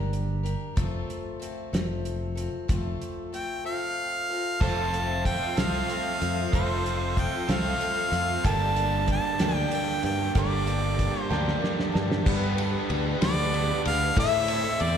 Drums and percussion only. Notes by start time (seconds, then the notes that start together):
0.13 closed hi-hat
0.46 closed hi-hat
0.77 kick, closed hi-hat
1.10 closed hi-hat
1.42 closed hi-hat
1.74 snare, closed hi-hat
2.05 closed hi-hat
2.37 closed hi-hat
2.69 kick, closed hi-hat
3.02 closed hi-hat
3.34 closed hi-hat
4.61 kick, crash
4.94 closed hi-hat
5.25 kick, closed hi-hat
5.57 snare, closed hi-hat
5.90 closed hi-hat
6.22 closed hi-hat
6.53 kick, closed hi-hat
6.86 closed hi-hat
7.17 kick, closed hi-hat
7.49 snare, closed hi-hat
7.81 closed hi-hat
8.13 closed hi-hat
8.45 kick, closed hi-hat
8.76 closed hi-hat
9.08 kick, closed hi-hat
9.39 snare, closed hi-hat
9.71 closed hi-hat
10.03 closed hi-hat
10.35 kick, closed hi-hat
10.67 closed hi-hat
10.99 kick, closed hi-hat
11.32 snare
11.48 snare
11.64 snare
11.80 snare
11.95 snare
12.12 snare
12.26 kick, crash
12.58 ride
12.90 ride
13.22 snare, ride
13.54 ride
13.85 ride
14.17 kick, ride
14.48 ride
14.80 ride